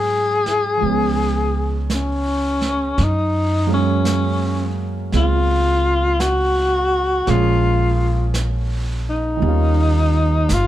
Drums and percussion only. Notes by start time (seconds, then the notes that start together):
0.46 snare
0.82 brush sweep
1.90 brush sweep, snare, hi-hat pedal
2.61 snare
2.98 brush sweep, snare
4.05 brush sweep, snare, hi-hat pedal
5.12 brush sweep, snare
6.20 brush sweep, snare, hi-hat pedal
7.27 brush sweep, snare
8.34 brush sweep, snare, hi-hat pedal
9.41 brush sweep
10.49 brush sweep, snare, hi-hat pedal